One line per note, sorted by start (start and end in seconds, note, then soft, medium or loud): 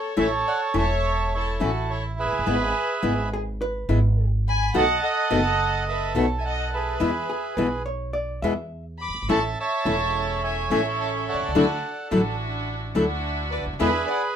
0.00 0.16 A4 medium
0.00 0.13 C#5 medium
0.00 0.18 C#5 medium
0.17 0.42 A1 loud
0.17 0.26 E3 medium
0.17 0.26 A3 loud
0.17 0.26 C#4 loud
0.17 0.26 E4 loud
0.17 0.77 A4 medium
0.17 0.30 C#5 medium
0.17 0.77 C#5 medium
0.17 0.31 E5 loud
0.47 0.60 D5 medium
0.47 0.61 F#5 loud
0.74 1.56 E1 loud
0.74 0.83 E3 medium
0.74 0.84 A3 medium
0.74 0.84 C#4 loud
0.74 0.84 E4 medium
0.74 1.29 C#5 medium
0.78 1.33 A4 medium
0.78 1.33 C#5 medium
0.78 1.36 E5 loud
1.34 2.45 E4 medium
1.34 1.60 A4 medium
1.34 1.61 A4 medium
1.34 1.60 C#5 loud
1.60 2.25 A1 loud
1.60 1.70 E3 medium
1.60 1.70 A3 medium
1.60 1.70 C#4 loud
1.60 1.70 E4 loud
1.60 1.88 F#4 medium
1.60 1.91 A4 medium
1.90 2.04 A4 medium
1.90 2.03 C#5 loud
2.19 3.29 G#4 medium
2.19 3.29 B4 medium
2.19 3.30 B4 medium
2.19 3.29 E5 loud
2.25 2.32 F1 medium
2.32 2.38 F#1 medium
2.39 2.46 G1 medium
2.46 2.71 G#1 loud
2.46 2.56 G#3 loud
2.46 2.56 B3 loud
2.46 2.56 E4 loud
3.02 3.84 G#1 loud
3.02 3.12 G#3 medium
3.02 3.12 B3 medium
3.02 3.13 E4 loud
3.33 3.41 G#4 medium
3.61 4.28 B4 loud
3.89 4.70 G#1 loud
3.89 3.98 G#3 loud
3.89 3.98 B3 loud
3.89 3.98 E4 loud
4.49 4.74 G#5 loud
4.49 4.76 B5 loud
4.74 4.98 B1 loud
4.74 4.83 B2 medium
4.74 4.83 D#3 medium
4.74 4.83 A3 loud
4.74 4.83 B3 loud
4.74 4.83 F#4 loud
4.74 5.02 D#5 medium
4.74 5.03 F#5 medium
4.74 5.02 F#5 medium
4.74 5.04 A5 loud
5.03 5.87 A4 medium
5.03 6.12 D#5 medium
5.03 5.84 D#5 medium
5.03 5.84 F#5 loud
5.30 6.11 F#1 loud
5.30 5.39 B2 medium
5.30 5.39 D#3 medium
5.30 5.39 A3 loud
5.30 5.40 B3 medium
5.30 5.40 F#4 loud
5.88 6.97 A4 medium
5.88 6.14 B4 medium
5.88 6.15 E5 medium
6.15 6.96 B1 loud
6.15 6.24 B2 loud
6.15 6.24 D#3 medium
6.15 6.25 A3 loud
6.15 6.25 B3 medium
6.15 6.25 F#4 loud
6.15 6.27 C#5 medium
6.15 6.26 E5 medium
6.38 6.45 E5 medium
6.38 6.45 G#5 medium
6.45 6.71 D#5 medium
6.45 6.74 F#5 medium
6.74 7.83 G#4 medium
6.74 7.54 B4 medium
6.74 7.83 B4 medium
6.74 7.54 E5 medium
7.00 7.24 E2 loud
7.00 7.09 B2 loud
7.00 7.09 E3 medium
7.00 7.09 G#3 medium
7.00 7.09 B3 loud
7.00 7.10 E4 loud
7.30 7.56 G#4 medium
7.57 8.38 B1 loud
7.57 7.66 B2 medium
7.57 7.66 E3 medium
7.57 7.67 G#3 medium
7.57 7.67 B3 medium
7.57 7.67 E4 loud
7.57 7.86 B4 medium
7.86 8.13 C#5 medium
8.13 8.42 D5 loud
8.42 9.08 E2 loud
8.42 8.52 B2 medium
8.42 8.52 E3 medium
8.42 8.52 G#3 loud
8.42 8.52 B3 medium
8.42 8.52 E4 medium
8.42 8.82 E5 loud
9.01 9.27 B5 medium
9.01 9.27 D6 loud
9.08 9.14 F#1 medium
9.14 9.21 G1 medium
9.22 9.29 G#1 medium
9.29 9.53 A1 medium
9.29 9.38 E3 medium
9.29 9.38 A3 loud
9.29 9.53 C#4 medium
9.29 9.38 C#4 medium
9.29 9.52 E4 medium
9.29 9.38 E4 loud
9.29 9.53 A4 medium
9.29 9.59 E5 medium
9.29 9.42 A5 medium
9.29 9.59 A5 medium
9.29 9.42 C#6 loud
9.58 10.42 C#5 medium
9.58 10.39 E5 medium
9.58 10.42 E5 medium
9.58 10.40 A5 loud
9.85 10.66 E1 loud
9.85 9.94 E3 medium
9.85 9.95 A3 medium
9.85 10.66 C#4 medium
9.85 9.95 C#4 medium
9.85 10.67 E4 medium
9.85 9.95 E4 loud
9.85 10.67 A4 medium
10.44 11.51 C#5 medium
10.44 11.52 E5 medium
10.44 10.70 E5 medium
10.44 10.70 G#5 medium
10.70 11.33 A1 loud
10.70 10.80 E3 medium
10.70 10.80 A3 loud
10.70 11.51 C#4 medium
10.70 10.80 C#4 loud
10.70 11.51 E4 medium
10.70 10.80 E4 loud
10.70 11.51 A4 loud
10.70 10.85 E5 medium
10.70 10.84 G#5 medium
11.00 11.14 E5 medium
11.00 11.13 A5 medium
11.29 12.36 A4 medium
11.29 12.08 D5 medium
11.29 12.08 F#5 medium
11.34 11.40 B1 medium
11.41 11.48 C2 medium
11.48 11.55 C#2 medium
11.55 11.79 D2 loud
11.55 11.64 D3 loud
11.55 11.64 F#3 loud
11.55 11.64 A3 loud
11.55 11.79 D4 medium
11.55 11.64 D4 loud
11.55 11.79 E4 medium
11.55 11.64 E4 loud
11.55 11.79 F#4 medium
12.11 12.91 A1 loud
12.11 12.20 D3 medium
12.11 12.20 F#3 loud
12.11 12.20 A3 medium
12.11 12.91 D4 medium
12.11 12.20 D4 medium
12.11 12.91 E4 medium
12.11 12.20 E4 loud
12.11 12.91 F#4 medium
12.94 13.59 D2 loud
12.94 13.04 D3 medium
12.94 13.04 F#3 medium
12.94 13.04 A3 medium
12.94 13.75 D4 medium
12.94 13.04 D4 loud
12.94 13.75 E4 medium
12.94 13.04 E4 loud
12.94 13.75 F#4 loud
13.52 13.65 B4 medium
13.52 13.65 D5 medium
13.59 13.66 C#2 medium
13.66 13.73 D2 medium
13.73 13.80 D#2 medium
13.79 14.04 E2 medium
13.79 13.88 B2 loud
13.79 13.89 D3 loud
13.79 13.89 G#3 loud
13.79 13.89 B3 loud
13.79 14.03 D4 medium
13.79 14.03 E4 medium
13.79 13.89 E4 loud
13.79 14.03 G#4 medium
13.79 14.36 G#4 medium
13.79 14.06 B4 medium
13.79 14.36 B4 medium
13.79 14.09 E5 loud
14.06 14.19 D5 medium
14.06 14.22 F#5 loud